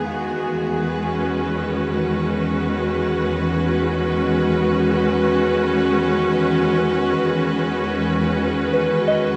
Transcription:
0, 0, Header, 1, 3, 480
1, 0, Start_track
1, 0, Key_signature, 4, "major"
1, 0, Tempo, 500000
1, 8990, End_track
2, 0, Start_track
2, 0, Title_t, "Synth bell"
2, 0, Program_c, 0, 98
2, 8015, Control_c, 0, 64, 127
2, 8386, Note_on_c, 0, 71, 51
2, 8714, Note_on_c, 0, 75, 53
2, 8990, Note_off_c, 0, 71, 0
2, 8990, Note_off_c, 0, 75, 0
2, 8990, End_track
3, 0, Start_track
3, 0, Title_t, "String section"
3, 0, Program_c, 1, 48
3, 0, Note_on_c, 1, 40, 54
3, 0, Note_on_c, 1, 51, 56
3, 0, Note_on_c, 1, 56, 65
3, 0, Note_on_c, 1, 59, 69
3, 0, Note_on_c, 1, 68, 69
3, 85, Note_on_c, 1, 66, 68
3, 734, Note_on_c, 1, 71, 59
3, 1009, Note_on_c, 1, 61, 67
3, 1539, Note_off_c, 1, 68, 0
3, 1673, Note_off_c, 1, 59, 0
3, 8990, Note_off_c, 1, 40, 0
3, 8990, Note_off_c, 1, 51, 0
3, 8990, Note_off_c, 1, 56, 0
3, 8990, Note_off_c, 1, 61, 0
3, 8990, Note_off_c, 1, 66, 0
3, 8990, Note_off_c, 1, 71, 0
3, 8990, End_track
0, 0, End_of_file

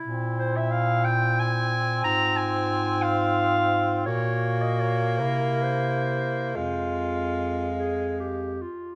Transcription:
0, 0, Header, 1, 5, 480
1, 0, Start_track
1, 0, Key_signature, -4, "minor"
1, 0, Tempo, 665188
1, 31, Time_signature, 6, 3, 24, 8
1, 2430, Tempo, 716846
1, 3390, Tempo, 815217
1, 3870, Tempo, 940439
1, 4350, Tempo, 823045
1, 5747, End_track
2, 0, Start_track
2, 0, Title_t, "Clarinet"
2, 0, Program_c, 0, 71
2, 281, Note_on_c, 0, 72, 102
2, 408, Note_on_c, 0, 76, 101
2, 419, Note_off_c, 0, 72, 0
2, 515, Note_on_c, 0, 77, 114
2, 526, Note_off_c, 0, 76, 0
2, 757, Note_on_c, 0, 79, 127
2, 768, Note_off_c, 0, 77, 0
2, 1005, Note_on_c, 0, 80, 123
2, 1016, Note_off_c, 0, 79, 0
2, 1467, Note_off_c, 0, 80, 0
2, 1471, Note_on_c, 0, 82, 118
2, 1706, Note_on_c, 0, 80, 116
2, 1717, Note_off_c, 0, 82, 0
2, 2179, Note_on_c, 0, 77, 124
2, 2189, Note_off_c, 0, 80, 0
2, 2888, Note_off_c, 0, 77, 0
2, 2892, Note_on_c, 0, 73, 110
2, 3264, Note_on_c, 0, 75, 92
2, 3274, Note_off_c, 0, 73, 0
2, 3390, Note_on_c, 0, 73, 94
2, 3399, Note_off_c, 0, 75, 0
2, 3620, Note_on_c, 0, 70, 99
2, 3629, Note_off_c, 0, 73, 0
2, 3875, Note_on_c, 0, 72, 99
2, 3882, Note_off_c, 0, 70, 0
2, 4350, Note_on_c, 0, 77, 97
2, 4358, Note_off_c, 0, 72, 0
2, 5557, Note_off_c, 0, 77, 0
2, 5747, End_track
3, 0, Start_track
3, 0, Title_t, "Clarinet"
3, 0, Program_c, 1, 71
3, 0, Note_on_c, 1, 64, 82
3, 1260, Note_off_c, 1, 64, 0
3, 1481, Note_on_c, 1, 65, 85
3, 2877, Note_off_c, 1, 65, 0
3, 2902, Note_on_c, 1, 66, 82
3, 3625, Note_on_c, 1, 64, 65
3, 3634, Note_off_c, 1, 66, 0
3, 4343, Note_off_c, 1, 64, 0
3, 4346, Note_on_c, 1, 65, 71
3, 5010, Note_off_c, 1, 65, 0
3, 5070, Note_on_c, 1, 68, 75
3, 5294, Note_off_c, 1, 68, 0
3, 5309, Note_on_c, 1, 67, 74
3, 5553, Note_on_c, 1, 65, 62
3, 5562, Note_off_c, 1, 67, 0
3, 5747, Note_off_c, 1, 65, 0
3, 5747, End_track
4, 0, Start_track
4, 0, Title_t, "Tenor saxophone"
4, 0, Program_c, 2, 66
4, 38, Note_on_c, 2, 60, 89
4, 2875, Note_off_c, 2, 60, 0
4, 2895, Note_on_c, 2, 58, 84
4, 4350, Note_on_c, 2, 56, 73
4, 4359, Note_off_c, 2, 58, 0
4, 5583, Note_off_c, 2, 56, 0
4, 5747, End_track
5, 0, Start_track
5, 0, Title_t, "Bass clarinet"
5, 0, Program_c, 3, 71
5, 35, Note_on_c, 3, 46, 91
5, 1443, Note_off_c, 3, 46, 0
5, 1477, Note_on_c, 3, 44, 89
5, 2904, Note_on_c, 3, 46, 82
5, 2914, Note_off_c, 3, 44, 0
5, 3623, Note_on_c, 3, 48, 80
5, 3632, Note_off_c, 3, 46, 0
5, 4349, Note_off_c, 3, 48, 0
5, 4353, Note_on_c, 3, 41, 71
5, 5561, Note_off_c, 3, 41, 0
5, 5747, End_track
0, 0, End_of_file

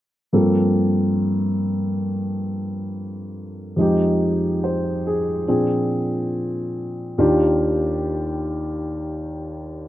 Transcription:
0, 0, Header, 1, 2, 480
1, 0, Start_track
1, 0, Key_signature, -2, "minor"
1, 0, Tempo, 860832
1, 177, Time_signature, 4, 2, 24, 8
1, 2094, Tempo, 849858
1, 5554, End_track
2, 0, Start_track
2, 0, Title_t, "Grand piano"
2, 0, Program_c, 0, 0
2, 182, Note_on_c, 0, 53, 28
2, 184, Note_on_c, 0, 43, 31
2, 186, Note_on_c, 0, 58, 28
2, 191, Note_on_c, 0, 60, 25
2, 191, Note_on_c, 0, 69, 31
2, 288, Control_c, 0, 64, 127
2, 2096, Note_off_c, 0, 53, 0
2, 2098, Note_on_c, 0, 41, 32
2, 2099, Note_off_c, 0, 43, 0
2, 2100, Note_off_c, 0, 58, 0
2, 2101, Control_c, 0, 64, 0
2, 2102, Note_off_c, 0, 60, 0
2, 2102, Note_off_c, 0, 69, 0
2, 2104, Note_on_c, 0, 53, 28
2, 2110, Note_on_c, 0, 56, 29
2, 2119, Note_on_c, 0, 63, 32
2, 2124, Note_on_c, 0, 67, 38
2, 2197, Control_c, 0, 64, 127
2, 2593, Note_on_c, 0, 72, 34
2, 2835, Note_on_c, 0, 68, 34
2, 2961, Note_off_c, 0, 72, 0
2, 3060, Note_off_c, 0, 41, 0
2, 3061, Note_off_c, 0, 53, 0
2, 3064, Control_c, 0, 64, 0
2, 3066, Note_off_c, 0, 56, 0
2, 3066, Note_off_c, 0, 68, 0
2, 3067, Note_on_c, 0, 46, 30
2, 3070, Note_off_c, 0, 63, 0
2, 3070, Note_on_c, 0, 53, 24
2, 3070, Note_on_c, 0, 60, 29
2, 3070, Note_on_c, 0, 62, 23
2, 3073, Note_off_c, 0, 67, 0
2, 3075, Note_on_c, 0, 68, 32
2, 3160, Control_c, 0, 64, 127
2, 4023, Note_off_c, 0, 46, 0
2, 4024, Note_off_c, 0, 53, 0
2, 4024, Note_off_c, 0, 60, 0
2, 4024, Note_off_c, 0, 62, 0
2, 4026, Control_c, 0, 64, 0
2, 4027, Note_off_c, 0, 68, 0
2, 4028, Note_on_c, 0, 39, 37
2, 4032, Note_on_c, 0, 51, 37
2, 4032, Note_on_c, 0, 65, 38
2, 4035, Note_on_c, 0, 62, 35
2, 4041, Note_on_c, 0, 67, 45
2, 4130, Control_c, 0, 64, 127
2, 5554, Note_off_c, 0, 39, 0
2, 5554, Note_off_c, 0, 51, 0
2, 5554, Note_off_c, 0, 62, 0
2, 5554, Note_off_c, 0, 65, 0
2, 5554, Note_off_c, 0, 67, 0
2, 5554, End_track
0, 0, End_of_file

